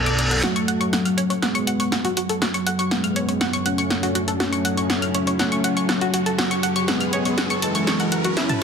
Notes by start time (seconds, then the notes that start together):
Already playing: B1 F#2 F#3 B3 A4 D5 G#5, reverse cymbal
0.06 D6, closed hi-hat
0.19 D5, closed hi-hat
0.31 F#5, closed hi-hat
0.43 F#2 F#3 A3 C#4 F#4 A5, snare, closed hi-hat, riser
0.56 C#6, closed hi-hat
0.68 F#5, closed hi-hat
0.81 C#6, closed hi-hat
0.93 F#5, snare, closed hi-hat
1.06 F6, closed hi-hat
1.18 C#5, closed hi-hat
1.30 C#5, closed hi-hat
1.42 G#3 B3 F#5, snare, closed hi-hat
1.55 C#6, closed hi-hat
1.67 F#5, closed hi-hat
1.80 C#6, closed hi-hat
1.92 F#5, snare, closed hi-hat
2.05 F#4, closed hi-hat
2.17 F#4, closed hi-hat
2.29 A4, closed hi-hat
2.42 F#4, snare, closed hi-hat
2.54 C#6, closed hi-hat
2.67 F#5, closed hi-hat
2.79 C#6, closed hi-hat
2.91 G#3 B3 F#5, snare, closed hi-hat
3.04 F6, closed hi-hat
3.16 C#5, closed hi-hat
3.29 C#5, closed hi-hat
3.41 F#5, snare, closed hi-hat
3.53 C#6, closed hi-hat
3.66 A3 C#4 F#5, closed hi-hat
3.78 C#6, closed hi-hat
3.90 F#5, snare, closed hi-hat
4.03 F#4, closed hi-hat
4.15 F#4, closed hi-hat
4.28 A4, closed hi-hat
4.40 A3 C#4 F#4, snare, closed hi-hat
4.52 C#6, closed hi-hat
4.65 F#5, closed hi-hat
4.77 C#6, closed hi-hat
4.90 F#5, snare, closed hi-hat
5.02 F6, closed hi-hat
5.15 C#5, closed hi-hat
5.27 C#5, closed hi-hat
5.39 A3 C#4 F#5, snare, closed hi-hat
5.52 C#6, closed hi-hat
5.64 F#5, closed hi-hat
5.77 C#6, closed hi-hat
5.89 F#5, snare, closed hi-hat
6.01 F#4, closed hi-hat
6.14 F#4, closed hi-hat
6.26 A4, closed hi-hat
6.39 F#4, snare, closed hi-hat
6.51 C#6, closed hi-hat
6.63 F#5, closed hi-hat
6.76 C#6, closed hi-hat
6.88 G#3 B3 F#5, snare, closed hi-hat
7.01 F6, closed hi-hat
7.13 C#5, closed hi-hat
7.25 C#5, closed hi-hat
7.38 F#5, snare, closed hi-hat
7.50 C#6, closed hi-hat
7.62 E3 G#3 A5, closed hi-hat
7.75 C#6, closed hi-hat
7.87 C#6, snare, closed hi-hat
8.00 F#5, closed hi-hat
8.12 F#5, closed hi-hat
8.24 F#4, closed hi-hat
8.37 B3 C#4 E4, snare, closed hi-hat
8.49 A5, closed hi-hat, mid tom